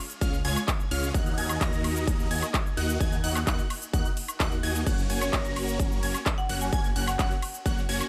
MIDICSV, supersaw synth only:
0, 0, Header, 1, 2, 480
1, 0, Start_track
1, 0, Key_signature, 6, "major"
1, 0, Tempo, 465116
1, 1182, Time_signature, 4, 2, 24, 8
1, 8346, End_track
2, 0, Start_track
2, 0, Title_t, "Supersaw synth"
2, 0, Program_c, 0, 81
2, 221, Note_on_c, 0, 56, 83
2, 221, Note_on_c, 0, 61, 78
2, 221, Note_on_c, 0, 65, 76
2, 221, Note_on_c, 0, 73, 76
2, 221, Note_on_c, 0, 77, 92
2, 375, Note_off_c, 0, 56, 0
2, 375, Note_off_c, 0, 61, 0
2, 375, Note_off_c, 0, 65, 0
2, 375, Note_off_c, 0, 73, 0
2, 375, Note_off_c, 0, 77, 0
2, 462, Note_on_c, 0, 56, 95
2, 462, Note_on_c, 0, 61, 83
2, 462, Note_on_c, 0, 65, 85
2, 462, Note_on_c, 0, 73, 82
2, 462, Note_on_c, 0, 80, 102
2, 615, Note_off_c, 0, 56, 0
2, 615, Note_off_c, 0, 61, 0
2, 615, Note_off_c, 0, 65, 0
2, 615, Note_off_c, 0, 73, 0
2, 615, Note_off_c, 0, 80, 0
2, 941, Note_on_c, 0, 56, 84
2, 941, Note_on_c, 0, 61, 79
2, 941, Note_on_c, 0, 65, 79
2, 941, Note_on_c, 0, 77, 92
2, 942, Note_on_c, 0, 73, 77
2, 1153, Note_off_c, 0, 56, 0
2, 1153, Note_off_c, 0, 61, 0
2, 1153, Note_off_c, 0, 65, 0
2, 1153, Note_off_c, 0, 73, 0
2, 1153, Note_off_c, 0, 77, 0
2, 1181, Note_on_c, 0, 66, 67
2, 1181, Note_on_c, 0, 78, 83
2, 1182, Note_on_c, 0, 58, 74
2, 1182, Note_on_c, 0, 63, 69
2, 1182, Note_on_c, 0, 75, 69
2, 1393, Note_off_c, 0, 58, 0
2, 1393, Note_off_c, 0, 63, 0
2, 1393, Note_off_c, 0, 66, 0
2, 1393, Note_off_c, 0, 75, 0
2, 1393, Note_off_c, 0, 78, 0
2, 1421, Note_on_c, 0, 58, 78
2, 1421, Note_on_c, 0, 63, 71
2, 1421, Note_on_c, 0, 66, 72
2, 1421, Note_on_c, 0, 75, 70
2, 1421, Note_on_c, 0, 80, 86
2, 1633, Note_off_c, 0, 58, 0
2, 1633, Note_off_c, 0, 63, 0
2, 1633, Note_off_c, 0, 66, 0
2, 1633, Note_off_c, 0, 75, 0
2, 1633, Note_off_c, 0, 80, 0
2, 1661, Note_on_c, 0, 58, 92
2, 2353, Note_off_c, 0, 58, 0
2, 2381, Note_on_c, 0, 63, 78
2, 2381, Note_on_c, 0, 66, 74
2, 2381, Note_on_c, 0, 75, 79
2, 2381, Note_on_c, 0, 80, 93
2, 2382, Note_on_c, 0, 58, 81
2, 2535, Note_off_c, 0, 58, 0
2, 2535, Note_off_c, 0, 63, 0
2, 2535, Note_off_c, 0, 66, 0
2, 2535, Note_off_c, 0, 75, 0
2, 2535, Note_off_c, 0, 80, 0
2, 2860, Note_on_c, 0, 63, 77
2, 2861, Note_on_c, 0, 58, 83
2, 2861, Note_on_c, 0, 66, 79
2, 2861, Note_on_c, 0, 75, 78
2, 2861, Note_on_c, 0, 78, 92
2, 3072, Note_off_c, 0, 63, 0
2, 3072, Note_off_c, 0, 75, 0
2, 3073, Note_off_c, 0, 58, 0
2, 3073, Note_off_c, 0, 66, 0
2, 3073, Note_off_c, 0, 78, 0
2, 3100, Note_on_c, 0, 58, 93
2, 3100, Note_on_c, 0, 63, 87
2, 3100, Note_on_c, 0, 66, 84
2, 3100, Note_on_c, 0, 75, 85
2, 3100, Note_on_c, 0, 80, 102
2, 3254, Note_off_c, 0, 58, 0
2, 3254, Note_off_c, 0, 63, 0
2, 3254, Note_off_c, 0, 66, 0
2, 3254, Note_off_c, 0, 75, 0
2, 3254, Note_off_c, 0, 80, 0
2, 3340, Note_on_c, 0, 58, 86
2, 3340, Note_on_c, 0, 63, 77
2, 3340, Note_on_c, 0, 66, 77
2, 3341, Note_on_c, 0, 75, 78
2, 3341, Note_on_c, 0, 78, 92
2, 3494, Note_off_c, 0, 58, 0
2, 3494, Note_off_c, 0, 63, 0
2, 3494, Note_off_c, 0, 66, 0
2, 3495, Note_off_c, 0, 75, 0
2, 3495, Note_off_c, 0, 78, 0
2, 3581, Note_on_c, 0, 58, 85
2, 3581, Note_on_c, 0, 63, 81
2, 3581, Note_on_c, 0, 66, 80
2, 3581, Note_on_c, 0, 75, 79
2, 3581, Note_on_c, 0, 78, 98
2, 3735, Note_off_c, 0, 58, 0
2, 3735, Note_off_c, 0, 63, 0
2, 3735, Note_off_c, 0, 66, 0
2, 3735, Note_off_c, 0, 75, 0
2, 3735, Note_off_c, 0, 78, 0
2, 4060, Note_on_c, 0, 58, 82
2, 4060, Note_on_c, 0, 66, 78
2, 4060, Note_on_c, 0, 75, 77
2, 4061, Note_on_c, 0, 63, 76
2, 4061, Note_on_c, 0, 78, 94
2, 4214, Note_off_c, 0, 58, 0
2, 4214, Note_off_c, 0, 63, 0
2, 4214, Note_off_c, 0, 66, 0
2, 4214, Note_off_c, 0, 75, 0
2, 4214, Note_off_c, 0, 78, 0
2, 4541, Note_on_c, 0, 58, 103
2, 4541, Note_on_c, 0, 63, 92
2, 4541, Note_on_c, 0, 66, 90
2, 4541, Note_on_c, 0, 75, 92
2, 4541, Note_on_c, 0, 78, 109
2, 4695, Note_off_c, 0, 58, 0
2, 4695, Note_off_c, 0, 63, 0
2, 4695, Note_off_c, 0, 66, 0
2, 4695, Note_off_c, 0, 75, 0
2, 4695, Note_off_c, 0, 78, 0
2, 4780, Note_on_c, 0, 58, 94
2, 4780, Note_on_c, 0, 63, 85
2, 4780, Note_on_c, 0, 75, 88
2, 4780, Note_on_c, 0, 80, 102
2, 4781, Note_on_c, 0, 66, 86
2, 4985, Note_off_c, 0, 58, 0
2, 4985, Note_off_c, 0, 63, 0
2, 4985, Note_off_c, 0, 66, 0
2, 4985, Note_off_c, 0, 75, 0
2, 4985, Note_off_c, 0, 80, 0
2, 5021, Note_on_c, 0, 58, 75
2, 5021, Note_on_c, 0, 61, 68
2, 5021, Note_on_c, 0, 66, 69
2, 5021, Note_on_c, 0, 73, 68
2, 5021, Note_on_c, 0, 78, 83
2, 5232, Note_off_c, 0, 66, 0
2, 5233, Note_off_c, 0, 58, 0
2, 5233, Note_off_c, 0, 61, 0
2, 5233, Note_off_c, 0, 73, 0
2, 5233, Note_off_c, 0, 78, 0
2, 5261, Note_on_c, 0, 58, 78
2, 5261, Note_on_c, 0, 61, 71
2, 5261, Note_on_c, 0, 66, 72
2, 5261, Note_on_c, 0, 73, 71
2, 5261, Note_on_c, 0, 80, 86
2, 5473, Note_off_c, 0, 58, 0
2, 5473, Note_off_c, 0, 61, 0
2, 5473, Note_off_c, 0, 66, 0
2, 5473, Note_off_c, 0, 73, 0
2, 5473, Note_off_c, 0, 80, 0
2, 5501, Note_on_c, 0, 58, 93
2, 5501, Note_on_c, 0, 73, 86
2, 6193, Note_off_c, 0, 58, 0
2, 6193, Note_off_c, 0, 73, 0
2, 6222, Note_on_c, 0, 58, 84
2, 6222, Note_on_c, 0, 61, 76
2, 6222, Note_on_c, 0, 66, 75
2, 6222, Note_on_c, 0, 73, 74
2, 6222, Note_on_c, 0, 80, 89
2, 6375, Note_off_c, 0, 58, 0
2, 6375, Note_off_c, 0, 61, 0
2, 6375, Note_off_c, 0, 66, 0
2, 6375, Note_off_c, 0, 73, 0
2, 6375, Note_off_c, 0, 80, 0
2, 6702, Note_on_c, 0, 58, 84
2, 6702, Note_on_c, 0, 61, 75
2, 6702, Note_on_c, 0, 66, 76
2, 6702, Note_on_c, 0, 73, 76
2, 6702, Note_on_c, 0, 78, 95
2, 6913, Note_off_c, 0, 58, 0
2, 6913, Note_off_c, 0, 61, 0
2, 6913, Note_off_c, 0, 66, 0
2, 6913, Note_off_c, 0, 73, 0
2, 6913, Note_off_c, 0, 78, 0
2, 6942, Note_on_c, 0, 58, 96
2, 6942, Note_on_c, 0, 61, 87
2, 6942, Note_on_c, 0, 66, 84
2, 6942, Note_on_c, 0, 73, 83
2, 6942, Note_on_c, 0, 80, 105
2, 7095, Note_off_c, 0, 58, 0
2, 7095, Note_off_c, 0, 61, 0
2, 7095, Note_off_c, 0, 66, 0
2, 7095, Note_off_c, 0, 73, 0
2, 7095, Note_off_c, 0, 80, 0
2, 7181, Note_on_c, 0, 58, 88
2, 7181, Note_on_c, 0, 61, 77
2, 7181, Note_on_c, 0, 66, 76
2, 7181, Note_on_c, 0, 73, 79
2, 7181, Note_on_c, 0, 78, 93
2, 7335, Note_off_c, 0, 58, 0
2, 7335, Note_off_c, 0, 61, 0
2, 7335, Note_off_c, 0, 66, 0
2, 7335, Note_off_c, 0, 73, 0
2, 7335, Note_off_c, 0, 78, 0
2, 7421, Note_on_c, 0, 58, 89
2, 7421, Note_on_c, 0, 61, 80
2, 7421, Note_on_c, 0, 66, 82
2, 7421, Note_on_c, 0, 73, 81
2, 7421, Note_on_c, 0, 78, 100
2, 7575, Note_off_c, 0, 58, 0
2, 7575, Note_off_c, 0, 61, 0
2, 7575, Note_off_c, 0, 66, 0
2, 7575, Note_off_c, 0, 73, 0
2, 7575, Note_off_c, 0, 78, 0
2, 7902, Note_on_c, 0, 58, 83
2, 7902, Note_on_c, 0, 61, 76
2, 7902, Note_on_c, 0, 66, 76
2, 7902, Note_on_c, 0, 73, 75
2, 7902, Note_on_c, 0, 78, 92
2, 8055, Note_off_c, 0, 58, 0
2, 8055, Note_off_c, 0, 61, 0
2, 8055, Note_off_c, 0, 66, 0
2, 8055, Note_off_c, 0, 73, 0
2, 8055, Note_off_c, 0, 78, 0
2, 8142, Note_on_c, 0, 58, 94
2, 8142, Note_on_c, 0, 61, 83
2, 8142, Note_on_c, 0, 66, 84
2, 8142, Note_on_c, 0, 73, 85
2, 8142, Note_on_c, 0, 80, 103
2, 8295, Note_off_c, 0, 58, 0
2, 8295, Note_off_c, 0, 61, 0
2, 8295, Note_off_c, 0, 66, 0
2, 8295, Note_off_c, 0, 73, 0
2, 8295, Note_off_c, 0, 80, 0
2, 8346, End_track
0, 0, End_of_file